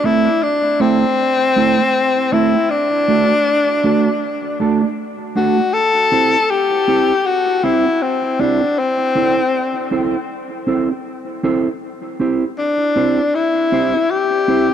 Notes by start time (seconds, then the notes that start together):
0.04 A3 C4 E4 A4
0.43 D4
0.80 A3 C4 E4 A4
1.56 A3 C4 E4 A4
1.81 muted clean electric guitar stroke
2.32 A3 C4 E4 A4
2.56 muted clean electric guitar stroke
2.71 D4
3.08 A3 D4 F#4 A4
3.84 A3 D4 F#4 A4
4.60 A3 D4 F#4 A4
4.83 muted clean electric guitar stroke
5.36 A3 D4 F#4 A4
5.59 muted clean electric guitar stroke
5.74 A4
6.12 C4 E4 G4 C5
6.50 G4
6.88 C4 E4 G4 C5
7.26 F#4
7.64 C4 E4 G4 C5
7.87 muted clean electric guitar stroke
8.02 C4
8.39 C4 D4 E4 G4 C5
8.63 muted clean electric guitar stroke
8.79 C4
9.15 C4 E4 A4 C5
9.91 C4 E4 A4 C5
10.67 C4 E4 A4 C5
10.91 muted clean electric guitar stroke
11.43 C4 E4 A4 C5
12.20 C4 E4 G4 C5
12.58 D4
12.96 C4 E4 G4 C5
13.35 E4
13.72 C4 E4 G4 C5
13.96 muted clean electric guitar stroke
14.11 G4
14.48 C4 E4 G4 C5